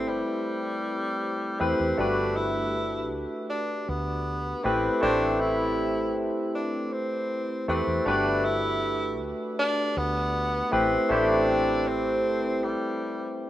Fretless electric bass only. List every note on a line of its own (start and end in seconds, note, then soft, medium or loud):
0.09 0.21 G1 loud
1.61 1.73 E2 medium
1.80 1.92 E2 medium
1.99 3.13 G1 loud
3.13 3.25 D2 loud
3.89 4.53 D2 medium
4.65 4.88 A1 loud
5.03 6.17 A1 loud
6.17 6.28 G1 loud
7.68 7.80 E2 medium
7.87 7.99 E2 medium
8.06 9.20 G1 loud
9.20 9.32 D2 loud
9.97 10.61 D2 medium
10.73 10.96 A1 loud
11.10 12.24 A1 loud
12.24 12.62 G1 loud
12.62 12.74 A1 loud